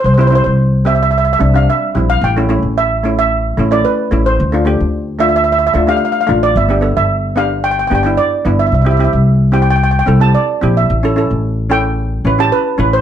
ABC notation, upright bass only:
X:1
M:4/4
L:1/16
Q:1/4=111
K:C
V:1 name="Upright bass" clef=bass
C,,3 C,,6- C,, C,,2 z2 _B,,,2 | A,,,3 A,,,6- A,,, A,,,2 z2 A,,,2 | D,,3 D,,6- D,, D,,2 z2 A,,,2 | G,,,3 G,,,6- G,,, G,,,2 z2 G,,,2 |
C,,3 C,,6- C,, C,,2 z2 _B,,,2 | A,,,3 A,,,6- A,,, A,,,2 z2 A,,,2 |]